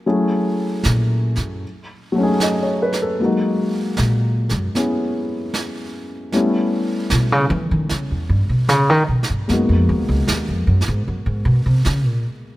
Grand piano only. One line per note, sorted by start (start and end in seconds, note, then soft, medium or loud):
0.06 1.63 F#3 soft
0.06 1.63 A3 soft
0.06 1.63 C#4 soft
0.06 1.63 E4 soft
0.06 1.64 G#4 medium
2.12 3.17 F#3 soft
2.12 3.19 A3 soft
2.18 3.20 C#4 soft
2.18 3.21 D#4 soft
2.23 3.23 G#4 medium
2.43 2.79 D#5 soft
2.63 2.95 C#5 soft
2.82 3.05 B4 medium
3.02 3.28 A4 soft
3.20 6.34 F#3 soft
3.20 6.33 G#3 soft
3.20 6.33 A#3 soft
3.24 6.35 D#4 soft
3.24 6.36 F#4 soft
4.75 6.32 B3 soft
4.75 6.32 C#4 soft
4.75 6.32 E4 soft
4.75 6.34 G#4 soft
6.33 9.49 G3 soft
6.33 9.49 A3 soft
6.33 9.49 B3 soft
6.33 9.49 C#4 soft
6.33 9.49 E4 soft
9.48 12.57 G#3 soft
9.48 12.57 A#3 soft
9.48 12.57 B3 soft
9.48 12.57 D#4 soft
9.53 12.57 F#4 soft